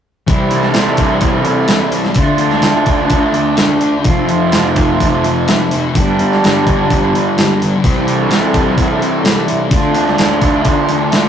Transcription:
0.27 C3 E3 G3 C4 E4 A4 E5, kick, open hi-hat
0.51 C4, open hi-hat
0.55 G3
0.63 snare
0.74 C3 G3 C4, snare, open hi-hat
0.97 C4, kick, open hi-hat
1.02 G3
1.21 C3 G3, kick, open hi-hat
1.26 C4
1.45 G3 C4, open hi-hat
1.68 C3 G3 C4, snare, open hi-hat
1.92 G3 C4, open hi-hat
2.05 snare
2.14 D3 A3 D4 F4, kick, open hi-hat
2.19 D4
2.38 A3 D4, open hi-hat
2.51 snare
2.62 D3 A3 D4, snare, open hi-hat
2.85 A3 D4, kick, open hi-hat
3.09 D3 A3 D4, kick, open hi-hat
3.33 A3 D4, open hi-hat
3.57 D3 A3 D4, snare, open hi-hat
3.81 A3 D4, open hi-hat
4.04 F2 C3 F3 A3 C4 F4 E5, kick, open hi-hat
4.29 C3 F3, open hi-hat
4.52 F2 C3 F3, snare, open hi-hat
4.76 C3 F3, kick, open hi-hat
5.00 F2 C3 F3, kick, open hi-hat
5.24 C3 F3, open hi-hat
5.47 F2 C3 F3, snare, open hi-hat
5.71 C3 F3, open hi-hat
5.95 G2 D3 G3 B3 D4 G4 D5, kick, open hi-hat
6.18 D3 G3, open hi-hat
6.33 snare
6.42 G2 D3 G3, snare, open hi-hat
6.65 D3 G3, kick, open hi-hat
6.89 G2 D3 G3, kick, open hi-hat
7.13 D3 G3, open hi-hat
7.37 G2 D3 G3, snare, open hi-hat
7.60 D3 G3, open hi-hat
7.83 C3 E3 G3 C4 G4 A4 E5, kick, open hi-hat
8.07 G3 C4, open hi-hat
8.29 C3 G3 C4, snare, open hi-hat
8.53 G3 C4, kick, open hi-hat
8.76 C3 G3 C4, kick, open hi-hat
8.99 G3 C4, open hi-hat
9.23 C3 G3 C4, snare, open hi-hat
9.47 G3 C4, open hi-hat
9.70 D3 A3 D4 F4, kick, open hi-hat
9.74 D4 F4
9.94 A3 D4, open hi-hat
10.08 snare
10.18 D3 A3 D4, snare, open hi-hat
10.41 D4, kick, open hi-hat
10.46 A3
10.65 D3 A3 D4, kick, open hi-hat
10.89 D4, open hi-hat
10.93 A3
11.12 D3 A3 D4, snare, open hi-hat

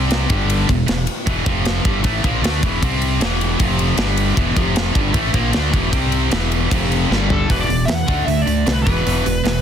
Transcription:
Already playing: C2 C3 G3 C4
0.11 snare, ride
0.29 G1 G2 D3 G3, kick, ride
0.50 ride
0.69 E1 E2 B2, kick, ride
0.88 E1 E2 B2, snare, ride
1.07 ride
1.26 E1 E2 B2 E3, kick, ride
1.46 F1 F2 C3 F3, kick, ride
1.65 snare, ride
1.84 G1 G2 D3 G3, kick, ride
2.02 A1 A2 E3 A3, kick, ride
2.23 A#1 A#2 F3 A#3, kick, ride
2.42 D2 D3 A3 D4, snare, ride
2.62 E1 E2 B2 E3, kick, ride
2.82 C2 C3 G3 C4, kick, ride
3.02 ride
3.20 E1 E2 B2 E3, snare, ride
3.41 ride
3.59 F1 F2 C3 F3, kick, ride
3.79 ride
3.97 G1 G2 D3 G3, snare, ride
4.17 ride
4.36 E1 E2 B2 E3, kick, ride
4.56 F1 F2 C3 F3, kick, ride
4.76 snare, ride
4.95 G1 G2 D3 G3, kick, ride
5.14 A1 A2 E3 A3, kick, ride
5.34 A#1 A#2 F3 A#3, kick, ride
5.53 D2 D3 A3 D4, snare, ride
5.73 E1 E2 B2 E3, kick, ride
5.91 C2 C3 G3 C4, kick, ride
5.95 G3 C4
6.12 ride
6.31 E1 E2 B2 E3, snare, ride
6.52 ride
6.70 F1 F2 C3 F3, kick, ride
6.92 ride
7.10 G1 G2 D3 G3, snare
7.30 A4, floor tom
7.49 E1 E2 B2 E3 B4, kick, open hi-hat
7.60 D5
7.68 E1 E2 B2, open hi-hat
7.85 E2 B2 E5, snare, open hi-hat
7.95 F#5
8.07 D2 D3 A3 D4, kick, open hi-hat
8.26 D2 D3 A3 E5, open hi-hat
8.42 D5
8.46 D2 D3 A3, open hi-hat
8.66 C2 D3 A3, snare, open hi-hat
8.73 B4
8.83 E2 B2 E3 B4, kick
8.87 E1, open hi-hat
9.05 E1 E2 B2 E3, open hi-hat
9.26 E1 E2 B2, open hi-hat
9.44 E1 E2 B2, snare, open hi-hat

